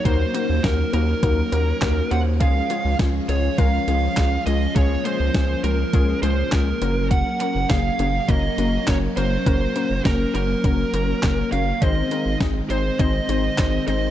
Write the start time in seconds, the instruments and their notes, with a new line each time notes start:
Already playing: string machine F#3 A#3
0.05 analog synth bass D#2, synth pluck A#3 D#4 F#4 A#4, string machine C#4, lead electric guitar C5, kick, closed hi-hat
0.34 synth pluck A#3 D#4 F#4 A#4, lead electric guitar C5, closed hi-hat
0.50 analog synth bass D#2
0.64 analog synth bass D#2, synth pluck A#3 D#4 F#4 A#4, lead electric guitar A#4, kick, snare, closed hi-hat
0.93 analog synth bass D#2, synth pluck A#3 D#4 F#4 A#4, lead electric guitar A#4, closed hi-hat
1.23 analog synth bass D#2, synth pluck A#3 D#4 F#4 A#4, kick, closed hi-hat
1.52 analog synth bass D#2, synth pluck A#3 D#4 F#4 A#4, closed hi-hat
1.82 analog synth bass D#2, synth pluck A#3 D#4 F#4 A#4, kick, snare, clap, closed hi-hat
2.11 analog synth bass D#2, synth pluck A#3 D#4 F#4 C5, lead electric guitar F#5, closed hi-hat
2.41 analog synth bass C#2, string machine F3 G#3, synth pluck G#3 C#4 F4 G#4, lead electric guitar F5, kick, closed hi-hat
2.70 synth pluck G#3 C#4 F4 G#4, closed hi-hat
2.85 analog synth bass C#2
2.99 analog synth bass C#2, synth pluck G#3 C#4 F4 G#4, kick, snare, closed hi-hat
3.29 analog synth bass C#2, synth pluck G#3 C#4 F4 G#4, lead electric guitar C#5, closed hi-hat
3.58 analog synth bass C#2, synth pluck G#3 C#4 F4 A#4, lead electric guitar F5, kick, closed hi-hat
3.88 analog synth bass C#2, synth pluck G#3 C#4 F4 G#4, closed hi-hat
4.17 analog synth bass C#2, synth pluck G#3 C#4 F4 G#4, kick, snare, clap, closed hi-hat
4.46 analog synth bass C#2, synth pluck G#3 C#4 F4 G#4, lead electric guitar D#5, closed hi-hat
4.76 analog synth bass C#2, synth pluck G#3 C#4 F4 G#4, string machine A#3, lead electric guitar C#5, kick, closed hi-hat
5.05 synth pluck G#3 C#4 F4 G#4, lead electric guitar C5, closed hi-hat
5.20 analog synth bass C#2
5.34 analog synth bass C#2, synth pluck G#3 C#4 F4 G#4, kick, snare, closed hi-hat
5.64 analog synth bass C#2, synth pluck G#3 C#4 F4 A#4, lead electric guitar A#4, closed hi-hat
5.93 analog synth bass C#2, synth pluck G#3 C#4 F4 G#4, kick, closed hi-hat
6.22 analog synth bass C#2, synth pluck G#3 C#4 F4 G#4, lead electric guitar C5, closed hi-hat
6.52 analog synth bass C#2, synth pluck G#3 C#4 F4 G#4, lead electric guitar A#4, kick, snare, clap, closed hi-hat
6.82 analog synth bass F#1, string machine F#3 C#4, synth pluck A#3 C#4 F#4 A#4, closed hi-hat
7.11 lead electric guitar F#5, kick, closed hi-hat
7.40 synth pluck A#3 C#4 F#4 A#4, lead electric guitar F#5, closed hi-hat
7.55 analog synth bass F#1
7.70 analog synth bass F#1, synth pluck A#3 C#4 F#4 G#4, lead electric guitar F5, kick, snare, closed hi-hat
7.99 analog synth bass F#1, synth pluck A#3 C#4 F#4 G#4, closed hi-hat
8.28 analog synth bass F#1, synth pluck A#3 C#4 F#4 A#4, lead electric guitar D#5, kick, closed hi-hat
8.58 analog synth bass F#1, synth pluck A#3 C#4 F#4 A#4, closed hi-hat
8.87 analog synth bass F#1, synth pluck A#3 C#4 F#4 A#4, lead electric guitar C#5, kick, snare, clap, closed hi-hat
9.17 analog synth bass F#1, synth pluck A#3 C#4 F#4 A#4, lead electric guitar C5, closed hi-hat
9.46 analog synth bass F#1, synth pluck A#3 C#4 F#4 A#4, kick, closed hi-hat
9.76 synth pluck A#3 C#4 F#4 A#4, closed hi-hat
9.90 analog synth bass F#1
10.05 analog synth bass F#1, synth pluck A#3 C#4 F#4 A#4, lead electric guitar A#4, kick, snare, closed hi-hat
10.35 analog synth bass F#1, synth pluck A#3 C#4 F#4 A#4, lead electric guitar A#4, closed hi-hat
10.64 analog synth bass F#1, synth pluck A#3 C#4 F#4 A#4, kick, closed hi-hat
10.93 analog synth bass F#1, synth pluck A#3 C#4 F#4 A#4, closed hi-hat
11.23 analog synth bass F#1, synth pluck A#3 C#4 F#4 A#4, kick, snare, clap, closed hi-hat
11.52 analog synth bass F#1, synth pluck A#3 C#4 F#4 A#4, lead electric guitar F5, closed hi-hat
11.82 analog synth bass G#1, string machine D#3 G#3 C4, synth pluck C4 D#4 G#4 C5, lead electric guitar D#5, kick, closed hi-hat
12.11 synth pluck C4 D#4 G#4 A#4, closed hi-hat
12.26 analog synth bass G#1
12.40 analog synth bass G#1, synth pluck C4 D#4 G#4 D#5, kick, snare, closed hi-hat
12.70 analog synth bass G#1, synth pluck C4 D#4 G#4 C5, lead electric guitar C5, closed hi-hat
12.99 analog synth bass G#1, synth pluck C4 D#4 G#4 C5, lead electric guitar D#5, kick, closed hi-hat
13.29 analog synth bass G#1, synth pluck C4 D#4 G#4 C5, closed hi-hat
13.58 analog synth bass G#1, synth pluck C4 D#4 G#4 C5, kick, snare, clap, closed hi-hat
13.88 analog synth bass G#1, synth pluck C4 D#4 G#4 C5, lead electric guitar D#5, closed hi-hat